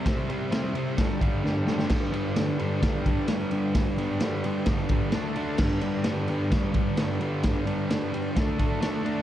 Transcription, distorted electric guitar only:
X:1
M:4/4
L:1/8
Q:1/4=130
K:Gmix
V:1 name="Distorted electric guitar" clef=bass
[C,G,C] [C,G,C] [C,G,C] [C,G,C] [G,,D,G,] [G,,D,G,] [G,,D,G,] [G,,D,G,] | [G,,D,G,] [G,,D,G,] [G,,D,G,] [G,,D,G,] [G,,D,G,] [G,,D,G,] [G,,D,G,] [G,,D,G,] | [G,,D,G,] [G,,D,G,] [G,,D,G,] [G,,D,G,] [G,,D,G,] [G,,D,G,] [D,A,D] [D,A,D] | [G,,D,G,] [G,,D,G,] [G,,D,G,] [G,,D,G,] [G,,D,G,] [G,,D,G,] [G,,D,G,] [G,,D,G,] |
[G,,D,G,] [G,,D,G,] [G,,D,G,] [G,,D,G,] [D,A,D] [D,A,D] [D,A,D] [D,A,D] |]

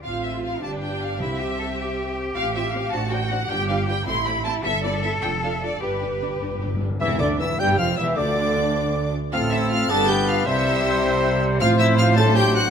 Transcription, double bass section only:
X:1
M:6/8
L:1/8
Q:3/8=104
K:C
V:1 name="Double bass section" clef=bass
A,,,3 G,,,3 | C,,6 | A,,,3 A,,,3 | G,,,3 A,,,3 |
G,,,3 F,,,3 | G,,,3 G,,,3 | E,,, D,, E,,, G,,, F,,, E,,, | D,,4- D,, z |
A,,,3 G,,,3 | C,,6 | A,,,6 |]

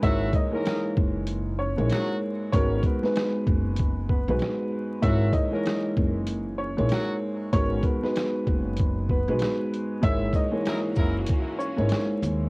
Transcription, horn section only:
X:1
M:4/4
L:1/16
Q:"Swing 16ths" 1/4=96
K:F#mix
V:1 name="Horn section"
[F,F]2 z [A,A]3 z6 [F,F]2 z2 | z16 | [F,F]2 z [A,A]3 z6 [F,F]2 z2 | z16 |
z4 [F,EA] z [F,EA]2 z8 |]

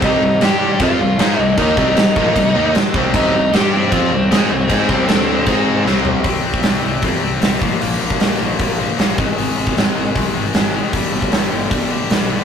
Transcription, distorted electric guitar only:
X:1
M:4/4
L:1/8
Q:1/4=154
K:Cm
V:1 name="Distorted electric guitar" clef=bass
[C,G,C] [C,G,] [G,DG]2 [F,CF] [C,G,] [A,EA] [C,G,] | [E,B,E] [C,G,C] [C,G,] [B,,F,B,] [C,G,] [E,B,E] z [C,G,C] | [C,G,C] [C,G,] [G,DG]2 [F,CF] [C,G,] [A,EA] [C,G,] | [A,EA] [C,G,C] [D,=A,D]2 [_A,EA]2 [C,G,C]2 |
[C,G,C] [C,G,C] [C,G,C] [C,G,C] [C,G,C] [C,G,C] [C,G,C] [B,,F,B,] | [B,,F,B,] [B,,F,B,] [B,,F,B,] [B,,F,B,] [B,,F,B,] [B,,F,B,] [B,,F,B,] [A,,E,A,] | [A,,E,A,] [A,,E,A,] [A,,E,A,] [A,,E,A,] [A,,E,A,] [A,,E,A,] [A,,E,A,] [A,,E,A,] | [G,,D,G,] [G,,D,G,] [G,,D,G,] [G,,D,G,] [G,,D,G,] [G,,D,G,] [G,,D,G,] [G,,D,G,] |]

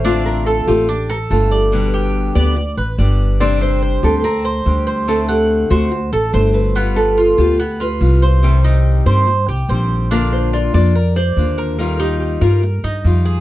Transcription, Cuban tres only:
X:1
M:4/4
L:1/8
Q:1/4=143
K:Cdor
V:1 name="Cuban tres"
D2 A2 D A2 d- | d G2 d2 =B d2 | C2 c2 C c2 c- | c ^f2 c2 A c2 |
=B,2 F2 B, F2 c- | c E2 c2 G c2 | [K:Bbmix] D2 F2 B d2 B- | B E2 B2 E2 A |]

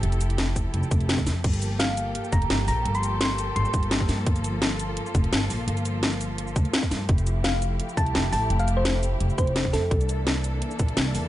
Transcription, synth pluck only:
X:1
M:4/4
L:1/16
Q:1/4=170
K:Gdor
V:1 name="Synth pluck"
z16 | z4 f2 z4 b2 z2 b2 | z c'3 c'2 z2 c'3 z4 z | z16 |
z16 | z4 f2 z4 a2 z2 a2 | z f2 c2 z4 z c2 z2 A2 | z16 |]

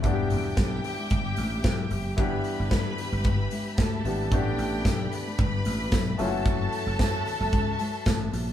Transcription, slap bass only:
X:1
M:4/4
L:1/16
Q:"Swing 16ths" 1/4=112
K:Edor
V:1 name="Slap bass" clef=bass
E,,,2 E,,,2 B,,,2 z2 G,,,2 A,,,2 B,,,2 F,,,2 | G,,,2 z G,,, G,,2 z G,,, G,,,2 z2 D,,2 ^G,,,2 | A,,,2 A,,,2 B,,,2 z2 G,,,2 A,,,2 B,,,2 F,,,2 | F,,,2 z F,,, F,,2 z F,,, C,,2 z2 A,,,2 ^A,,,2 |]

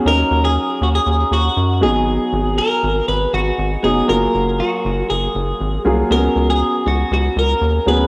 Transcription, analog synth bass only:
X:1
M:4/4
L:1/16
Q:1/4=119
K:F#
V:1 name="Analog synth bass" clef=bass
D,,2 D,,3 z D,,2 D,,2 D,,2 F,,2 G,,,2- | G,,,2 G,,,3 z G,,,2 G,,,2 G,,,2 G,,,2 E,,,2 | F,,,2 F,,,3 z F,,,2 F,,,2 F,,,2 G,,,2 ^B,,,2 | C,,2 C,,3 z C,,2 C,,2 C,,2 D,,2 =D,,2 |]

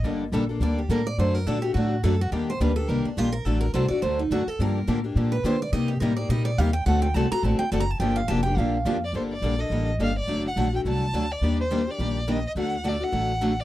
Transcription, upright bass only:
X:1
M:4/4
L:1/8
Q:"Swing" 1/4=211
K:Gm
V:1 name="Upright bass" clef=bass
G,,,2 B,,,2 D,,2 A,,2 | ^F,,2 B,,2 A,,2 F,,2 | E,,2 D,,2 C,, z B,,,2 | A,,,2 C,, z D,,2 ^F,, z |
G,,2 A,,2 B,,2 D,2 | C,2 A,,2 B,,2 E,,2 | D,,2 C,, z A,,, z ^F,,,2 | G,,,2 F,,,2 B,,,2 F,,2 |
G,,,2 B,,,2 A,,,2 G,,,2 | ^F,,,2 B,,,2 C,,2 D,,2 | E,,4 B,,,4 | D,,4 A,,,4 |]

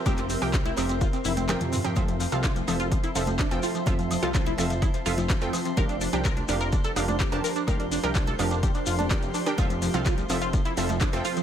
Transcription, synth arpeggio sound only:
X:1
M:4/4
L:1/16
Q:1/4=126
K:F
V:1 name="Synth arpeggio sound"
G C C G C E C C F C E C C z C C | F F, F, F, F F, F, F F, E F, F, D F, F F, | F F, F, F F, E F, F, E F, F F, F, z F, F, | B D D D B D D B D A D D G D B D |
B D D B D A D D G D F D D z D D | F F, F, F, F F, F, F F, E F, F, D F, F F, |]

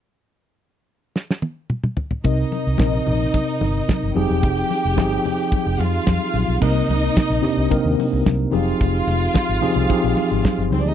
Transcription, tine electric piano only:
X:1
M:4/4
L:1/8
Q:1/4=110
K:Cm
V:1 name="Tine electric piano"
z8 | [C,CEBe] z [C,CEBe]3 z2 [F,CEGA]- | [F,CEGA] z [F,CEGA]3 z3 | [C,B,CEB]2 z [C,CDEG] [C,B,CEB]3 [F,CEGA]- |
[F,CEGA]2 z [F,CEGA] [F,CEGA]3 z |]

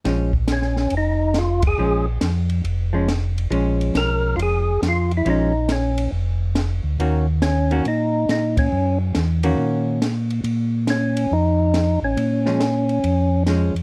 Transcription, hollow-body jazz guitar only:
X:1
M:4/4
L:1/8
Q:"Swing" 1/4=138
K:Bbm
V:1 name="Hollow-body jazz guitar" clef=bass
[F,A,D] z6 z | [F,A,D] z4 [F,A,D] z2 | [F,A,D]4- [F,A,D] z3 | [F,A,D] z6 z |
[E,B,DG] z2 [E,B,DG] z4 | z3 [E,B,DG]3 z2 | z8 | z [F,A,D] z4 [F,A,D] z |]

